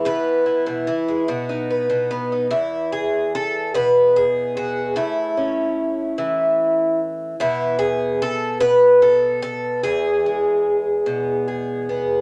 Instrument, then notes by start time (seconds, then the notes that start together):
twelve-string acoustic guitar
Already playing: E3 B3
0.05 B2 B4
0.46 E4
0.66 B2
0.87 E3
1.08 G#3
1.28 B2 F#4
1.49 D#4
1.71 B4
1.90 B2
2.11 B3
2.32 D#4
2.50 E2 E4
2.92 G#4
3.35 A4
3.74 B2 B4
4.16 G#4
4.57 F#4
4.96 A2 E4
5.37 C#4
6.18 E3
7.40 B2 E4
7.79 G#4
8.22 A4
8.60 B2 B4
9.02 A4
9.42 A4
9.83 E2 G#4
10.26 G#3
11.06 B2
11.48 G#4
11.89 B3